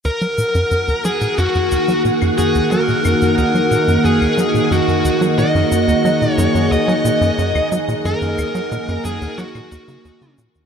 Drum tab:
SH |xxxxxxxxxxxxxxxx|xxxxxxxxxxxxxxxx|xxxxxxxxxxxxxxxx|xxxxxxxxxxxxxxxx|
CL |-------------x--|--x------x------|-------------x--|--x------x------|